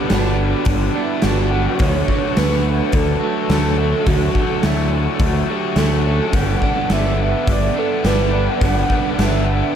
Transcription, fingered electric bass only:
0.11 G1
0.66 G1
1.24 G1
1.80 D2
2.37 D2
2.94 D2
3.50 D2
4.07 D2
4.64 D2
5.20 D2
5.76 D2
6.33 G1
6.90 G1
7.47 G1
8.04 G1
8.61 G1
9.19 G1

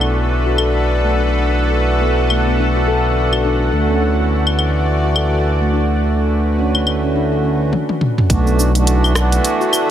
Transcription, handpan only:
0.46 F#4
0.59 A4
1.04 A3
1.16 D4
2.02 B3
2.30 A3
2.47 B3
2.59 D4
2.76 F#4
2.88 A4
3.32 F#4
3.45 D4
3.73 A3
3.90 C#4
4.01 D4
5.04 F#4
5.16 A4
5.61 A3
5.73 D4
6.59 C#4
6.87 A3
7.03 C#4
7.15 D4
7.32 F#4
7.44 C#4
8.30 A3
8.46 B3
8.59 D4
9.61 F#4
9.73 A4

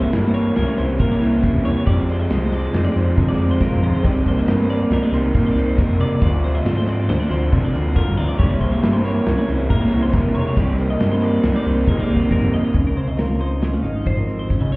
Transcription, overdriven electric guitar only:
Already playing: G3 A#3 E4
0.11 C3 G3 A#3 E4
0.54 C3 G3 A#3 E4
0.77 G3 A#3 E4
0.99 C3 G3 A#3 E4
1.20 A#3 E4
1.24 G3
1.42 C3 G3 A#3
1.46 E4
1.86 F2 C3 F3 G#3
1.90 C4
2.29 C3 F3 G#3
2.34 C4
2.73 F2 C3 F3 G#3 C4
2.95 F3 G#3 C4
3.17 C3 F3 G#3
3.21 C4
3.40 F3 G#3 C4
3.60 F2 C3 F3 G#3 C4
4.02 C3 G3 C4 D#4
4.45 C3 G3 C4 D#4
4.88 C3 G3 C4 D#4
5.12 G3 C4 D#4
5.34 C3 G3 C4 D#4
5.55 G3 C4 D#4
5.76 C3 G3 C4
5.80 D#4
6.21 D3 F3 A3 D4
6.65 D3 F3 A3 D4
7.08 D3 F3 A3
7.13 D4
7.31 F3 A3 D4
7.53 D3 F3 A3 D4
7.74 A3 D4
7.78 F3
7.96 D3 F3 A3 D4
8.38 C3 G3 A#3 E4
8.82 C3 G3 A#3 E4
9.26 C3 G3 A#3 E4
9.48 G3 A#3 E4
9.70 C3 G3 A#3 E4
9.91 G3 A#3 E4
10.14 C3 G3 A#3 E4
10.56 C3 G3 C4
10.60 D#4
11.01 C3 G3 C4 D#4
11.44 C3 G3 C4 D#4
11.66 G3 C4 D#4
11.87 C3 G3 C4 D#4
12.09 G3 C4 D#4
12.30 C3 G3 C4 D#4

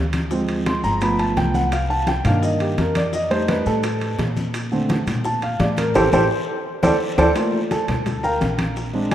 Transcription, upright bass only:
Already playing: D2
0.84 G1
1.37 C2
2.25 G2
2.78 F2
3.66 A2
4.19 A#2
5.07 A#2
5.60 A2
5.95 A1
6.12 A1
6.83 D2
7.18 D2
7.88 D2
8.41 A#1

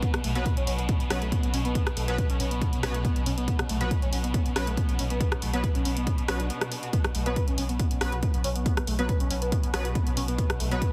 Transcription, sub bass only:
0.24 B1
0.35 B1
0.57 B1
0.67 B1
0.79 B1
1.10 B1
1.22 B1
1.43 B1
1.53 B1
1.65 B1
1.97 B1
2.08 B1
2.30 B1
2.40 B1
2.51 B1
2.83 B1
2.94 B1
3.16 B1
3.26 B1
3.38 B1
3.69 B1
3.81 B1
4.02 B1
4.12 B1
4.24 B1
4.56 B1
4.67 B1
4.89 B1
4.99 B1
5.10 B1
5.42 B1
5.53 B1
5.75 B1
5.85 B1
5.96 B1
6.28 B1
6.40 B1
7.15 B1
7.26 B1
7.48 B1
7.58 B1
7.69 B1
8.01 B1
8.12 B1
8.34 B1
8.44 B1
8.55 B1
8.87 B1
8.99 B1
9.20 B1
9.31 B1
9.42 B1
9.74 B1
9.85 B1
10.07 B1
10.17 B1
10.28 B1
10.60 B1
10.71 B1

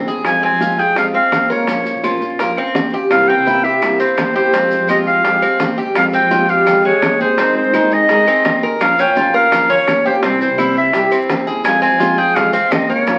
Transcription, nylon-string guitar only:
0.07 G3 C4 E4
0.24 C3 F3 G#3 C4 F4
0.60 C3 F3 G#3 C4 F4
0.78 G#3 C4 F4
0.95 C3 F3 G#3 C4 F4
1.13 G#3 C4 F4
1.32 muted nylon-string guitar stroke
1.49 G#3 C4 F4
1.67 F3 A#3 C#4 F4
2.03 F3 A#3 C#4 F4 C5
2.20 C#4 F4 C5
2.40 F3 A#3 C#4 F4 C5
2.57 C#4 F4 C5
2.75 muted nylon-string guitar stroke
2.92 C#4 F4 C5
3.10 C3 E3 A#3 C4 E4
3.45 C3 E3 A#3 C4 E4
3.63 A#3 C4 E4
3.81 C3 E3 A#3 C4 E4
3.98 A#3 C4 E4
4.17 muted nylon-string guitar stroke
4.34 A#3 C4 E4
4.52 C3 F3 G#3 C4 G4
4.88 C3 F3 G#3 C4 G4
5.06 G#3 C4 G4
5.24 C3 F3 G#3 C4 G4
5.42 G#3 C4 G4
5.60 muted nylon-string guitar stroke
5.78 G#3 C4 G4
5.95 C3 F3 G#3 C4 G4
6.31 C3 F3 G#3 C4 G4
6.49 G#3 C4 G4
6.66 C3 F3 G#3 C4 G4
6.84 G#3 C4 G4
7.02 muted nylon-string guitar stroke
7.19 G#3 C4 G4
7.37 D#3 G#3 C4 D#4 G#4
7.73 D#3 G#3 C4 D#4 G#4
7.91 C4 D#4 G#4
8.09 D#3 G#3 C4 D#4 G#4
8.27 C4 D#4 G#4
8.45 muted nylon-string guitar stroke
8.62 C4 D#4 G#4
8.80 F3 A#3 C#4 F4
9.15 F3 A#3 C#4 F4
9.33 A#3 C#4 F4
9.51 F3 A#3 C#4 F4
9.69 A#3 C#4 F4
9.87 muted nylon-string guitar stroke
10.05 A#3 C#4 F4
10.23 C3 E3 G3 C4 E4
10.58 C3 E3 G3 C4 E4
10.76 G3 C4 E4
10.93 C3 E3 G3 C4 E4
11.10 G3 C4 E4
11.29 muted nylon-string guitar stroke
11.46 G3 C4 E4
11.64 C3 F3 G#3 C4 F4
11.99 C3 F3 G#3 C4 F4
12.17 G#3 C4 F4
12.36 C3 F3 G#3 C4 F4
12.53 G#3 C4 F4
12.71 muted nylon-string guitar stroke
12.89 G#3 C4 F4
13.07 F3 A#3 C#4 F4

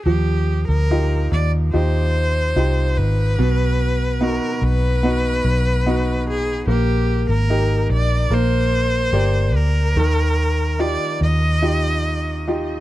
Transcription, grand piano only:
0.06 F3
0.91 D#4 F4 G4
1.73 D#4 F4 G4
2.56 D#4 F4 G4
3.39 B2
4.21 B3 D#4 F#4
5.03 B3 D#4 F#4
5.86 B3 D#4 F#4
6.68 A#3
7.50 D#4 G4 A#4
8.31 A#3
9.13 G4 A#4 D5
9.97 D#3
10.79 D#4 F4 G4
11.62 D#4 F4 G4
12.48 D#4 F4 G4

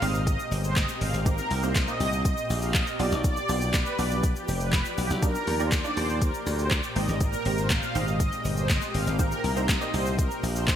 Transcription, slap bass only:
0.02 G#1
0.51 G1
1.01 G#1
1.13 G#1
1.51 C2
2.00 C2
2.50 A#1
2.99 B1
3.12 B1
3.49 B1
3.99 B1
4.48 F1
4.98 B1
5.10 B1
5.47 D#2
5.97 D#2
6.46 D2
6.96 G#1
7.08 G#1
7.45 G#1
7.95 G#1
8.45 G1
8.94 G#1
9.07 G#1
9.44 C2
9.94 C2
10.43 A#1

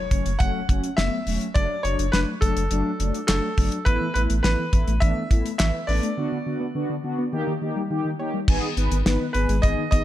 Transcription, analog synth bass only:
0.11 F#1
0.26 F#1
0.40 F#1
0.69 F#1
0.98 F#1
1.27 E1
1.56 F#1
1.84 F#1
1.99 F#1
2.13 F#1
2.42 F#1
2.56 F#1
2.71 F#1
3.00 F#1
3.29 F#1
3.58 G1
3.86 A1
4.15 A1
4.30 A1
4.44 A1
4.73 A1
4.87 A1
5.02 A1
5.31 A1
5.60 A1
5.88 A1
8.48 G#1
8.77 G#1
8.91 G#1
9.06 G#1
9.35 G#1
9.49 G#1
9.63 G#1
9.92 G#1

